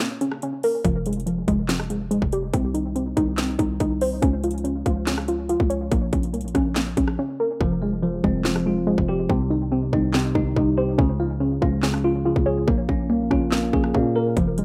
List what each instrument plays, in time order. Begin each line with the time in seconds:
Already playing: synth pluck C#4
0.00 synth pluck A#3, snare, closed hi-hat
0.21 synth pluck C#4, closed hi-hat
0.32 cross-stick
0.42 synth pluck C#4, closed hi-hat
0.63 synth pluck A#4, open hi-hat
0.85 808-style bass F1, synth pluck F3, kick, closed hi-hat
1.06 synth pluck G#3, closed hi-hat
1.13 closed hi-hat
1.20 closed hi-hat
1.26 synth pluck F3, closed hi-hat
1.48 808-style bass F1, synth pluck G#3, kick, closed hi-hat
1.68 synth pluck F3, snare, clap, closed hi-hat
1.80 cross-stick
1.90 synth pluck G#3, closed hi-hat
2.11 synth pluck G#3, closed hi-hat
2.22 808-style bass F1, kick
2.32 synth pluck G4, closed hi-hat
2.53 808-style bass C2, synth pluck C4, kick, closed hi-hat
2.74 synth pluck D#4, closed hi-hat
2.96 synth pluck C4, closed hi-hat
3.17 808-style bass C2, synth pluck D#4, kick, closed hi-hat
3.37 synth pluck C4, snare, clap, closed hi-hat
3.59 808-style bass C2, synth pluck D#4, kick, closed hi-hat
3.80 808-style bass C2, synth pluck D#4, kick, closed hi-hat
4.01 synth pluck C5, open hi-hat
4.22 808-style bass C#2, synth pluck C#4, kick, closed hi-hat
4.44 synth pluck F4, closed hi-hat
4.51 closed hi-hat
4.58 closed hi-hat
4.64 synth pluck C#4, closed hi-hat
4.86 808-style bass C#2, synth pluck F4, kick, closed hi-hat
5.06 synth pluck C#4, snare, clap, closed hi-hat
5.18 cross-stick
5.28 synth pluck F4, closed hi-hat
5.49 synth pluck F4, closed hi-hat
5.60 808-style bass C#2, kick
5.70 synth pluck C#5, closed hi-hat
5.92 808-style bass A#1, synth pluck A#3, kick, closed hi-hat
6.13 808-style bass A#1, synth pluck C#4, kick, closed hi-hat
6.23 closed hi-hat
6.34 808-style bass C2, synth pluck A#3, closed hi-hat
6.41 808-style bass A#1, closed hi-hat
6.48 closed hi-hat
6.55 808-style bass A#1, synth pluck C#4, kick, cross-stick, closed hi-hat
6.75 synth pluck A#3, snare, clap, closed hi-hat
6.97 808-style bass A#1, synth pluck C#4, kick, closed hi-hat
7.08 cross-stick
7.19 synth pluck C#4
7.40 synth pluck A#4
7.61 808-style bass F1, tine electric piano F3, synth pluck F3, kick
7.82 tine electric piano G#3, synth pluck G#3
8.03 synth pluck F3, tine electric piano F3
8.24 808-style bass F1, synth pluck G#3, tine electric piano C4, kick
8.44 synth pluck F3, tine electric piano F3, snare, clap
8.56 cross-stick
8.66 synth pluck G#3, tine electric piano F4
8.87 tine electric piano F3, synth pluck G#3
8.98 808-style bass F1, kick
9.09 tine electric piano G4, synth pluck G4
9.29 808-style bass C2, tine electric piano C3, synth pluck C4, kick
9.50 tine electric piano G3, synth pluck D#4
9.72 tine electric piano C3, synth pluck C4
9.93 808-style bass C2, tine electric piano C4, synth pluck D#4, kick
10.13 tine electric piano C3, synth pluck C4, snare, clap
10.35 808-style bass C2, synth pluck D#4, tine electric piano D#4, kick
10.56 808-style bass C2, tine electric piano C3, synth pluck D#4, kick
10.78 tine electric piano G4, synth pluck C5
10.98 808-style bass C#2, tine electric piano C#3, synth pluck C#4, kick
11.20 tine electric piano G#3, synth pluck F4
11.40 tine electric piano C#3, synth pluck C#4
11.62 808-style bass C#2, tine electric piano C#4, synth pluck F4, kick
11.82 tine electric piano C#3, synth pluck C#4, snare, clap
11.94 cross-stick
12.04 synth pluck F4, tine electric piano F4
12.25 tine electric piano C#3, synth pluck F4
12.36 808-style bass C#2, kick
12.46 tine electric piano G#4, synth pluck C#5
12.68 808-style bass A#1, tine electric piano A#3, synth pluck A#3, kick
12.89 808-style bass A#1, synth pluck C#4, tine electric piano C#4, kick
13.10 808-style bass C2, synth pluck A#3, tine electric piano A#3
13.20 808-style bass A#1
13.31 808-style bass A#1, synth pluck C#4, tine electric piano F4, kick, cross-stick
13.51 tine electric piano A#3, synth pluck A#3, snare, clap
13.73 808-style bass A#1, synth pluck C#4, tine electric piano G#4, kick
13.84 cross-stick
13.94 808-style bass A#2, tine electric piano A#3, synth pluck C#4, kick
14.16 tine electric piano A#4, synth pluck A#4
14.37 808-style bass F1, tine electric piano F3, synth pluck F3, kick, closed hi-hat
14.58 tine electric piano G#3, synth pluck G#3, closed hi-hat